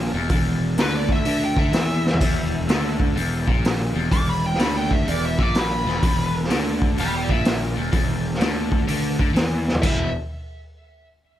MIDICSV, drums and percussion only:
0, 0, Header, 1, 2, 480
1, 0, Start_track
1, 0, Tempo, 476948
1, 301, Time_signature, 4, 2, 24, 8
1, 11471, End_track
2, 0, Start_track
2, 0, Title_t, "Drums"
2, 296, Note_on_c, 9, 46, 56
2, 302, Note_on_c, 9, 36, 110
2, 397, Note_off_c, 9, 46, 0
2, 402, Note_off_c, 9, 36, 0
2, 780, Note_on_c, 9, 46, 61
2, 792, Note_on_c, 9, 38, 116
2, 881, Note_off_c, 9, 46, 0
2, 893, Note_off_c, 9, 38, 0
2, 1095, Note_on_c, 9, 36, 85
2, 1196, Note_off_c, 9, 36, 0
2, 1258, Note_on_c, 9, 46, 55
2, 1359, Note_off_c, 9, 46, 0
2, 1576, Note_on_c, 9, 36, 86
2, 1677, Note_off_c, 9, 36, 0
2, 1740, Note_on_c, 9, 46, 60
2, 1753, Note_on_c, 9, 38, 115
2, 1841, Note_off_c, 9, 46, 0
2, 1853, Note_off_c, 9, 38, 0
2, 2078, Note_on_c, 9, 38, 65
2, 2148, Note_on_c, 9, 43, 81
2, 2178, Note_off_c, 9, 38, 0
2, 2221, Note_on_c, 9, 36, 105
2, 2223, Note_on_c, 9, 46, 56
2, 2223, Note_on_c, 9, 55, 77
2, 2249, Note_off_c, 9, 43, 0
2, 2322, Note_off_c, 9, 36, 0
2, 2324, Note_off_c, 9, 46, 0
2, 2324, Note_off_c, 9, 55, 0
2, 2704, Note_on_c, 9, 46, 55
2, 2716, Note_on_c, 9, 38, 111
2, 2805, Note_off_c, 9, 46, 0
2, 2817, Note_off_c, 9, 38, 0
2, 3016, Note_on_c, 9, 36, 91
2, 3116, Note_off_c, 9, 36, 0
2, 3191, Note_on_c, 9, 46, 53
2, 3292, Note_off_c, 9, 46, 0
2, 3497, Note_on_c, 9, 36, 92
2, 3598, Note_off_c, 9, 36, 0
2, 3669, Note_on_c, 9, 46, 61
2, 3682, Note_on_c, 9, 38, 112
2, 3770, Note_off_c, 9, 46, 0
2, 3782, Note_off_c, 9, 38, 0
2, 4142, Note_on_c, 9, 36, 105
2, 4145, Note_on_c, 9, 46, 59
2, 4243, Note_off_c, 9, 36, 0
2, 4246, Note_off_c, 9, 46, 0
2, 4567, Note_on_c, 9, 38, 32
2, 4623, Note_on_c, 9, 46, 60
2, 4635, Note_off_c, 9, 38, 0
2, 4635, Note_on_c, 9, 38, 108
2, 4724, Note_off_c, 9, 46, 0
2, 4736, Note_off_c, 9, 38, 0
2, 4940, Note_on_c, 9, 36, 91
2, 5041, Note_off_c, 9, 36, 0
2, 5108, Note_on_c, 9, 46, 59
2, 5209, Note_off_c, 9, 46, 0
2, 5422, Note_on_c, 9, 36, 90
2, 5523, Note_off_c, 9, 36, 0
2, 5582, Note_on_c, 9, 46, 62
2, 5594, Note_on_c, 9, 38, 119
2, 5682, Note_off_c, 9, 46, 0
2, 5694, Note_off_c, 9, 38, 0
2, 5918, Note_on_c, 9, 38, 35
2, 6019, Note_off_c, 9, 38, 0
2, 6065, Note_on_c, 9, 46, 57
2, 6067, Note_on_c, 9, 36, 114
2, 6166, Note_off_c, 9, 46, 0
2, 6168, Note_off_c, 9, 36, 0
2, 6479, Note_on_c, 9, 38, 32
2, 6543, Note_on_c, 9, 46, 61
2, 6555, Note_off_c, 9, 38, 0
2, 6555, Note_on_c, 9, 38, 106
2, 6643, Note_off_c, 9, 46, 0
2, 6656, Note_off_c, 9, 38, 0
2, 6861, Note_on_c, 9, 36, 88
2, 6962, Note_off_c, 9, 36, 0
2, 7023, Note_on_c, 9, 46, 54
2, 7124, Note_off_c, 9, 46, 0
2, 7339, Note_on_c, 9, 36, 85
2, 7440, Note_off_c, 9, 36, 0
2, 7498, Note_on_c, 9, 46, 61
2, 7510, Note_on_c, 9, 38, 116
2, 7598, Note_off_c, 9, 46, 0
2, 7610, Note_off_c, 9, 38, 0
2, 7978, Note_on_c, 9, 46, 52
2, 7980, Note_on_c, 9, 36, 110
2, 8079, Note_off_c, 9, 46, 0
2, 8081, Note_off_c, 9, 36, 0
2, 8393, Note_on_c, 9, 38, 30
2, 8459, Note_on_c, 9, 46, 60
2, 8471, Note_off_c, 9, 38, 0
2, 8471, Note_on_c, 9, 38, 113
2, 8560, Note_off_c, 9, 46, 0
2, 8572, Note_off_c, 9, 38, 0
2, 8773, Note_on_c, 9, 36, 90
2, 8874, Note_off_c, 9, 36, 0
2, 8940, Note_on_c, 9, 46, 63
2, 9040, Note_off_c, 9, 46, 0
2, 9254, Note_on_c, 9, 36, 84
2, 9354, Note_off_c, 9, 36, 0
2, 9416, Note_on_c, 9, 46, 61
2, 9428, Note_on_c, 9, 38, 115
2, 9517, Note_off_c, 9, 46, 0
2, 9529, Note_off_c, 9, 38, 0
2, 9745, Note_on_c, 9, 38, 61
2, 9809, Note_on_c, 9, 43, 81
2, 9845, Note_off_c, 9, 38, 0
2, 9894, Note_on_c, 9, 49, 87
2, 9896, Note_on_c, 9, 36, 94
2, 9909, Note_off_c, 9, 43, 0
2, 9995, Note_off_c, 9, 49, 0
2, 9996, Note_off_c, 9, 36, 0
2, 11471, End_track
0, 0, End_of_file